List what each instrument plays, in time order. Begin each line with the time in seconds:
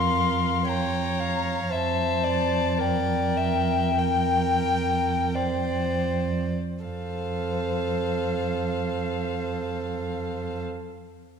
Already playing: cello F2, viola A#4, violin F5 C6
0.68 viola C#5, violin G5 A#5
1.20 violin F5
1.70 cello F2, viola C5, violin E5 A5
2.24 violin D5
2.79 viola A#4, violin D5 G5
3.37 violin E5
3.99 viola A#4, violin G5
5.35 viola C5, violin D5
6.84 cello F2, viola A4, violin C5 F5